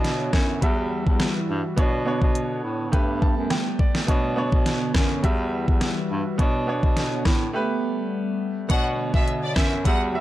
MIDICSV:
0, 0, Header, 1, 6, 480
1, 0, Start_track
1, 0, Key_signature, 2, "minor"
1, 0, Tempo, 576923
1, 1478, Time_signature, 4, 2, 24, 8
1, 8491, End_track
2, 0, Start_track
2, 0, Title_t, "Violin section"
2, 0, Program_c, 0, 48
2, 7235, Note_on_c, 0, 78, 105
2, 7326, Note_off_c, 0, 78, 0
2, 7603, Note_on_c, 0, 76, 77
2, 7684, Note_off_c, 0, 76, 0
2, 7845, Note_on_c, 0, 74, 84
2, 7925, Note_off_c, 0, 74, 0
2, 7957, Note_on_c, 0, 76, 77
2, 8048, Note_off_c, 0, 76, 0
2, 8199, Note_on_c, 0, 78, 81
2, 8289, Note_off_c, 0, 78, 0
2, 8491, End_track
3, 0, Start_track
3, 0, Title_t, "Grand piano"
3, 0, Program_c, 1, 0
3, 0, Control_c, 1, 64, 127
3, 0, Note_on_c, 1, 59, 85
3, 0, Note_on_c, 1, 62, 76
3, 0, Note_on_c, 1, 64, 90
3, 0, Note_on_c, 1, 73, 94
3, 508, Note_on_c, 1, 55, 84
3, 513, Note_off_c, 1, 59, 0
3, 517, Note_off_c, 1, 62, 0
3, 518, Note_on_c, 1, 66, 77
3, 522, Note_off_c, 1, 64, 0
3, 526, Note_on_c, 1, 76, 97
3, 530, Control_c, 1, 64, 0
3, 537, Note_off_c, 1, 73, 0
3, 680, Control_c, 1, 64, 127
3, 1347, Note_off_c, 1, 55, 0
3, 1352, Note_off_c, 1, 66, 0
3, 1357, Note_off_c, 1, 76, 0
3, 1468, Note_on_c, 1, 59, 84
3, 1477, Note_on_c, 1, 62, 80
3, 1486, Note_on_c, 1, 73, 97
3, 1487, Control_c, 1, 64, 0
3, 1650, Control_c, 1, 64, 127
3, 1682, Note_off_c, 1, 59, 0
3, 1686, Note_off_c, 1, 62, 0
3, 1691, Note_off_c, 1, 73, 0
3, 1709, Note_on_c, 1, 59, 86
3, 1718, Note_on_c, 1, 62, 78
3, 1727, Note_on_c, 1, 73, 93
3, 2428, Note_on_c, 1, 57, 90
3, 2433, Note_off_c, 1, 59, 0
3, 2437, Note_on_c, 1, 67, 80
3, 2438, Note_off_c, 1, 62, 0
3, 2442, Note_off_c, 1, 73, 0
3, 2446, Note_on_c, 1, 71, 98
3, 2448, Control_c, 1, 64, 0
3, 2581, Control_c, 1, 64, 127
3, 2678, Note_on_c, 1, 81, 69
3, 2901, Note_off_c, 1, 81, 0
3, 2918, Note_on_c, 1, 79, 72
3, 3141, Note_off_c, 1, 79, 0
3, 3157, Note_on_c, 1, 74, 75
3, 3267, Note_off_c, 1, 57, 0
3, 3272, Note_off_c, 1, 67, 0
3, 3277, Note_off_c, 1, 71, 0
3, 3381, Note_off_c, 1, 74, 0
3, 3388, Note_on_c, 1, 59, 93
3, 3398, Note_on_c, 1, 62, 84
3, 3406, Note_on_c, 1, 73, 99
3, 3407, Control_c, 1, 64, 0
3, 3543, Control_c, 1, 64, 127
3, 3602, Note_off_c, 1, 59, 0
3, 3607, Note_off_c, 1, 62, 0
3, 3611, Note_off_c, 1, 73, 0
3, 3627, Note_on_c, 1, 59, 90
3, 3636, Note_on_c, 1, 62, 80
3, 3645, Note_on_c, 1, 73, 95
3, 4347, Note_on_c, 1, 55, 87
3, 4352, Note_off_c, 1, 59, 0
3, 4356, Note_on_c, 1, 66, 82
3, 4357, Note_off_c, 1, 62, 0
3, 4362, Note_off_c, 1, 73, 0
3, 4365, Note_on_c, 1, 76, 99
3, 4369, Control_c, 1, 64, 0
3, 4506, Control_c, 1, 64, 127
3, 5187, Note_off_c, 1, 55, 0
3, 5191, Note_off_c, 1, 66, 0
3, 5196, Note_off_c, 1, 76, 0
3, 5307, Note_on_c, 1, 59, 92
3, 5317, Note_on_c, 1, 62, 79
3, 5326, Note_on_c, 1, 73, 93
3, 5330, Control_c, 1, 64, 0
3, 5473, Control_c, 1, 64, 127
3, 5521, Note_off_c, 1, 59, 0
3, 5526, Note_off_c, 1, 62, 0
3, 5531, Note_off_c, 1, 73, 0
3, 5547, Note_on_c, 1, 59, 85
3, 5557, Note_on_c, 1, 62, 78
3, 5566, Note_on_c, 1, 73, 95
3, 6268, Note_on_c, 1, 57, 93
3, 6273, Note_off_c, 1, 59, 0
3, 6277, Note_off_c, 1, 62, 0
3, 6277, Note_on_c, 1, 67, 80
3, 6282, Note_off_c, 1, 73, 0
3, 6287, Control_c, 1, 64, 0
3, 6287, Note_on_c, 1, 71, 96
3, 6446, Control_c, 1, 64, 127
3, 7107, Note_off_c, 1, 57, 0
3, 7112, Note_off_c, 1, 67, 0
3, 7117, Note_off_c, 1, 71, 0
3, 7227, Note_on_c, 1, 59, 78
3, 7236, Note_on_c, 1, 62, 68
3, 7246, Note_on_c, 1, 73, 90
3, 7247, Control_c, 1, 64, 0
3, 7372, Control_c, 1, 64, 127
3, 8067, Note_off_c, 1, 59, 0
3, 8072, Note_off_c, 1, 62, 0
3, 8076, Note_off_c, 1, 73, 0
3, 8187, Note_on_c, 1, 55, 78
3, 8196, Note_on_c, 1, 66, 71
3, 8205, Note_on_c, 1, 76, 87
3, 8208, Control_c, 1, 64, 0
3, 8376, Control_c, 1, 64, 127
3, 8401, Note_off_c, 1, 55, 0
3, 8406, Note_off_c, 1, 66, 0
3, 8410, Note_off_c, 1, 76, 0
3, 8428, Note_on_c, 1, 55, 72
3, 8437, Note_on_c, 1, 66, 66
3, 8446, Note_on_c, 1, 76, 84
3, 8491, Note_off_c, 1, 55, 0
3, 8491, Note_off_c, 1, 66, 0
3, 8491, Note_off_c, 1, 76, 0
3, 8491, End_track
4, 0, Start_track
4, 0, Title_t, "Analog synth pad"
4, 0, Program_c, 2, 89
4, 0, Note_on_c, 2, 50, 78
4, 0, Note_on_c, 2, 59, 70
4, 0, Note_on_c, 2, 73, 89
4, 507, Note_off_c, 2, 50, 0
4, 507, Note_off_c, 2, 73, 0
4, 508, Note_off_c, 2, 59, 0
4, 513, Note_on_c, 2, 71, 76
4, 514, Note_on_c, 2, 52, 72
4, 514, Note_on_c, 2, 55, 67
4, 514, Note_on_c, 2, 64, 67
4, 515, Note_on_c, 2, 66, 67
4, 1466, Note_off_c, 2, 52, 0
4, 1466, Note_off_c, 2, 55, 0
4, 1466, Note_off_c, 2, 64, 0
4, 1466, Note_off_c, 2, 71, 0
4, 1467, Note_off_c, 2, 66, 0
4, 1475, Note_on_c, 2, 59, 77
4, 1476, Note_on_c, 2, 50, 78
4, 1476, Note_on_c, 2, 73, 87
4, 2427, Note_off_c, 2, 50, 0
4, 2427, Note_off_c, 2, 73, 0
4, 2436, Note_on_c, 2, 55, 73
4, 2436, Note_on_c, 2, 57, 67
4, 3387, Note_off_c, 2, 55, 0
4, 3387, Note_off_c, 2, 57, 0
4, 3394, Note_on_c, 2, 50, 79
4, 3394, Note_on_c, 2, 73, 86
4, 4328, Note_off_c, 2, 59, 0
4, 4346, Note_off_c, 2, 50, 0
4, 4346, Note_off_c, 2, 73, 0
4, 4354, Note_on_c, 2, 52, 74
4, 4355, Note_on_c, 2, 55, 69
4, 4355, Note_on_c, 2, 64, 66
4, 4355, Note_on_c, 2, 66, 67
4, 4355, Note_on_c, 2, 71, 82
4, 5306, Note_off_c, 2, 52, 0
4, 5307, Note_off_c, 2, 55, 0
4, 5307, Note_off_c, 2, 64, 0
4, 5307, Note_off_c, 2, 66, 0
4, 5307, Note_off_c, 2, 71, 0
4, 5317, Note_on_c, 2, 59, 76
4, 5317, Note_on_c, 2, 73, 89
4, 5318, Note_on_c, 2, 50, 81
4, 6268, Note_off_c, 2, 50, 0
4, 6268, Note_off_c, 2, 73, 0
4, 6277, Note_on_c, 2, 57, 67
4, 6278, Note_on_c, 2, 55, 76
4, 7218, Note_off_c, 2, 59, 0
4, 7228, Note_off_c, 2, 55, 0
4, 7228, Note_off_c, 2, 57, 0
4, 7236, Note_on_c, 2, 50, 82
4, 7236, Note_on_c, 2, 59, 74
4, 7237, Note_on_c, 2, 73, 89
4, 8187, Note_off_c, 2, 50, 0
4, 8187, Note_off_c, 2, 59, 0
4, 8188, Note_off_c, 2, 73, 0
4, 8195, Note_on_c, 2, 55, 66
4, 8195, Note_on_c, 2, 66, 66
4, 8196, Note_on_c, 2, 52, 76
4, 8196, Note_on_c, 2, 71, 82
4, 8197, Note_on_c, 2, 64, 67
4, 8491, Note_off_c, 2, 52, 0
4, 8491, Note_off_c, 2, 55, 0
4, 8491, Note_off_c, 2, 64, 0
4, 8491, Note_off_c, 2, 66, 0
4, 8491, Note_off_c, 2, 71, 0
4, 8491, End_track
5, 0, Start_track
5, 0, Title_t, "Bass clarinet"
5, 0, Program_c, 3, 71
5, 0, Note_on_c, 3, 47, 93
5, 242, Note_off_c, 3, 47, 0
5, 276, Note_on_c, 3, 42, 91
5, 493, Note_off_c, 3, 42, 0
5, 518, Note_on_c, 3, 40, 113
5, 848, Note_off_c, 3, 40, 0
5, 887, Note_on_c, 3, 40, 95
5, 1102, Note_off_c, 3, 40, 0
5, 1238, Note_on_c, 3, 43, 100
5, 1352, Note_off_c, 3, 43, 0
5, 1478, Note_on_c, 3, 47, 106
5, 1808, Note_off_c, 3, 47, 0
5, 1844, Note_on_c, 3, 47, 91
5, 2161, Note_off_c, 3, 47, 0
5, 2198, Note_on_c, 3, 45, 91
5, 2438, Note_on_c, 3, 43, 105
5, 2450, Note_off_c, 3, 45, 0
5, 2768, Note_off_c, 3, 43, 0
5, 2804, Note_on_c, 3, 42, 91
5, 2906, Note_off_c, 3, 42, 0
5, 3398, Note_on_c, 3, 47, 110
5, 3728, Note_off_c, 3, 47, 0
5, 3764, Note_on_c, 3, 47, 93
5, 4081, Note_off_c, 3, 47, 0
5, 4116, Note_on_c, 3, 42, 94
5, 4332, Note_off_c, 3, 42, 0
5, 4357, Note_on_c, 3, 40, 115
5, 4687, Note_off_c, 3, 40, 0
5, 4726, Note_on_c, 3, 40, 94
5, 4941, Note_off_c, 3, 40, 0
5, 5077, Note_on_c, 3, 43, 102
5, 5192, Note_off_c, 3, 43, 0
5, 5318, Note_on_c, 3, 47, 107
5, 5648, Note_off_c, 3, 47, 0
5, 5683, Note_on_c, 3, 47, 88
5, 6001, Note_off_c, 3, 47, 0
5, 6035, Note_on_c, 3, 45, 91
5, 6252, Note_off_c, 3, 45, 0
5, 7238, Note_on_c, 3, 47, 109
5, 7568, Note_off_c, 3, 47, 0
5, 7604, Note_on_c, 3, 47, 100
5, 7921, Note_off_c, 3, 47, 0
5, 7955, Note_on_c, 3, 42, 97
5, 8172, Note_off_c, 3, 42, 0
5, 8197, Note_on_c, 3, 40, 113
5, 8491, Note_off_c, 3, 40, 0
5, 8491, End_track
6, 0, Start_track
6, 0, Title_t, "Drums"
6, 37, Note_on_c, 9, 38, 65
6, 38, Note_on_c, 9, 42, 70
6, 120, Note_off_c, 9, 38, 0
6, 121, Note_off_c, 9, 42, 0
6, 275, Note_on_c, 9, 37, 88
6, 276, Note_on_c, 9, 36, 103
6, 276, Note_on_c, 9, 38, 117
6, 358, Note_off_c, 9, 37, 0
6, 359, Note_off_c, 9, 36, 0
6, 359, Note_off_c, 9, 38, 0
6, 518, Note_on_c, 9, 36, 93
6, 519, Note_on_c, 9, 42, 75
6, 601, Note_off_c, 9, 36, 0
6, 602, Note_off_c, 9, 42, 0
6, 887, Note_on_c, 9, 36, 94
6, 970, Note_off_c, 9, 36, 0
6, 995, Note_on_c, 9, 37, 76
6, 996, Note_on_c, 9, 38, 102
6, 996, Note_on_c, 9, 42, 66
6, 1078, Note_off_c, 9, 37, 0
6, 1079, Note_off_c, 9, 38, 0
6, 1079, Note_off_c, 9, 42, 0
6, 1478, Note_on_c, 9, 36, 109
6, 1478, Note_on_c, 9, 42, 88
6, 1561, Note_off_c, 9, 36, 0
6, 1561, Note_off_c, 9, 42, 0
6, 1844, Note_on_c, 9, 36, 89
6, 1927, Note_off_c, 9, 36, 0
6, 1957, Note_on_c, 9, 42, 71
6, 2041, Note_off_c, 9, 42, 0
6, 2438, Note_on_c, 9, 36, 100
6, 2438, Note_on_c, 9, 42, 79
6, 2521, Note_off_c, 9, 36, 0
6, 2521, Note_off_c, 9, 42, 0
6, 2680, Note_on_c, 9, 36, 94
6, 2763, Note_off_c, 9, 36, 0
6, 2914, Note_on_c, 9, 37, 81
6, 2916, Note_on_c, 9, 38, 100
6, 2916, Note_on_c, 9, 42, 69
6, 2998, Note_off_c, 9, 37, 0
6, 2999, Note_off_c, 9, 38, 0
6, 2999, Note_off_c, 9, 42, 0
6, 3155, Note_on_c, 9, 36, 87
6, 3239, Note_off_c, 9, 36, 0
6, 3285, Note_on_c, 9, 38, 75
6, 3368, Note_off_c, 9, 38, 0
6, 3398, Note_on_c, 9, 36, 107
6, 3398, Note_on_c, 9, 42, 88
6, 3481, Note_off_c, 9, 36, 0
6, 3481, Note_off_c, 9, 42, 0
6, 3764, Note_on_c, 9, 36, 94
6, 3847, Note_off_c, 9, 36, 0
6, 3877, Note_on_c, 9, 38, 67
6, 3878, Note_on_c, 9, 42, 69
6, 3960, Note_off_c, 9, 38, 0
6, 3961, Note_off_c, 9, 42, 0
6, 4114, Note_on_c, 9, 37, 94
6, 4115, Note_on_c, 9, 38, 110
6, 4116, Note_on_c, 9, 36, 103
6, 4197, Note_off_c, 9, 37, 0
6, 4198, Note_off_c, 9, 38, 0
6, 4199, Note_off_c, 9, 36, 0
6, 4357, Note_on_c, 9, 36, 96
6, 4358, Note_on_c, 9, 42, 82
6, 4441, Note_off_c, 9, 36, 0
6, 4441, Note_off_c, 9, 42, 0
6, 4726, Note_on_c, 9, 36, 94
6, 4809, Note_off_c, 9, 36, 0
6, 4833, Note_on_c, 9, 37, 77
6, 4834, Note_on_c, 9, 42, 69
6, 4835, Note_on_c, 9, 38, 98
6, 4916, Note_off_c, 9, 37, 0
6, 4918, Note_off_c, 9, 38, 0
6, 4918, Note_off_c, 9, 42, 0
6, 5317, Note_on_c, 9, 36, 108
6, 5317, Note_on_c, 9, 42, 90
6, 5401, Note_off_c, 9, 36, 0
6, 5401, Note_off_c, 9, 42, 0
6, 5683, Note_on_c, 9, 36, 89
6, 5767, Note_off_c, 9, 36, 0
6, 5796, Note_on_c, 9, 38, 67
6, 5797, Note_on_c, 9, 42, 71
6, 5879, Note_off_c, 9, 38, 0
6, 5881, Note_off_c, 9, 42, 0
6, 6034, Note_on_c, 9, 37, 93
6, 6035, Note_on_c, 9, 36, 102
6, 6035, Note_on_c, 9, 38, 117
6, 6117, Note_off_c, 9, 37, 0
6, 6119, Note_off_c, 9, 36, 0
6, 6119, Note_off_c, 9, 38, 0
6, 7237, Note_on_c, 9, 36, 108
6, 7237, Note_on_c, 9, 42, 90
6, 7320, Note_off_c, 9, 42, 0
6, 7321, Note_off_c, 9, 36, 0
6, 7604, Note_on_c, 9, 36, 94
6, 7687, Note_off_c, 9, 36, 0
6, 7718, Note_on_c, 9, 42, 67
6, 7801, Note_off_c, 9, 42, 0
6, 7954, Note_on_c, 9, 37, 91
6, 7955, Note_on_c, 9, 36, 103
6, 7955, Note_on_c, 9, 38, 115
6, 8037, Note_off_c, 9, 37, 0
6, 8038, Note_off_c, 9, 38, 0
6, 8039, Note_off_c, 9, 36, 0
6, 8197, Note_on_c, 9, 36, 96
6, 8198, Note_on_c, 9, 42, 81
6, 8281, Note_off_c, 9, 36, 0
6, 8282, Note_off_c, 9, 42, 0
6, 8491, End_track
0, 0, End_of_file